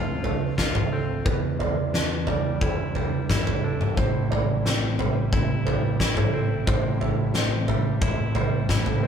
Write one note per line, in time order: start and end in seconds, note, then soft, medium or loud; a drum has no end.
0.00 1.22 D2 medium
0.00 0.24 D3 medium
0.00 1.23 D3 medium
0.00 0.23 A3 soft
0.00 1.23 A3 medium
0.00 0.91 C4 medium
0.00 1.23 C4 medium
0.00 0.57 F4 medium
0.00 1.23 F4 medium
0.00 0.24 C5 soft
0.23 1.26 A3 soft
0.23 0.92 B4 medium
0.23 floor tom medium
0.58 1.26 F4 medium
0.58 kick medium
0.58 snare medium
0.75 floor tom medium
0.75 mid tom medium
0.92 1.26 C4 medium
0.92 1.26 A4 medium
1.25 3.93 E2 medium
1.25 2.95 E2 medium
1.25 3.94 D3 medium
1.25 9.07 G3 medium
1.25 3.94 B3 medium
1.25 9.07 E4 medium
1.25 1.60 B4 medium
1.25 kick medium
1.25 floor tom medium
1.59 1.94 D5 soft
1.59 floor tom medium
1.94 3.63 D4 medium
1.94 2.28 B4 medium
1.94 snare medium
2.27 2.96 G3 soft
2.27 2.95 D5 soft
2.27 floor tom medium
2.61 3.30 E4 medium
2.61 kick medium
2.61 floor tom medium
2.95 4.01 G3 soft
2.95 3.63 B4 medium
2.95 floor tom medium
3.29 5.32 E4 medium
3.29 kick medium
3.29 snare medium
3.29 mid tom medium
3.47 floor tom medium
3.63 3.97 D4 medium
3.63 3.97 A4 soft
3.81 mid tom medium
3.95 6.63 A1 medium
3.95 5.66 A2 medium
3.95 9.07 C3 medium
3.95 9.07 A3 medium
3.95 4.31 C5 medium
3.95 kick medium
3.95 floor tom medium
4.31 4.98 D5 medium
4.31 floor tom medium
4.65 6.33 C4 medium
4.65 snare medium
4.98 5.66 G3 soft
4.98 5.65 C5 medium
4.98 floor tom medium
5.33 5.98 E4 medium
5.33 kick medium
5.33 floor tom medium
5.65 7.35 G3 soft
5.65 6.33 B4 medium
5.65 floor tom medium
6.00 7.68 E4 medium
6.00 kick medium
6.00 snare medium
6.17 floor tom medium
6.17 mid tom medium
6.33 7.35 C4 medium
6.33 6.67 A4 medium
6.67 9.07 A1 medium
6.67 8.36 A2 medium
6.67 7.00 C5 medium
6.67 kick medium
6.67 floor tom medium
7.00 7.34 E5 medium
7.00 floor tom medium
7.34 9.02 C4 medium
7.34 7.68 C5 medium
7.34 snare medium
7.68 8.35 G3 medium
7.68 8.35 E5 medium
7.68 floor tom medium
8.01 8.69 E4 medium
8.01 kick medium
8.01 floor tom medium
8.35 9.07 G3 soft
8.35 9.03 C5 medium
8.35 floor tom medium
8.69 9.07 E4 medium
8.69 kick medium
8.69 snare medium
8.69 mid tom medium
8.86 floor tom medium
9.03 9.07 C4 medium
9.03 9.07 B4 medium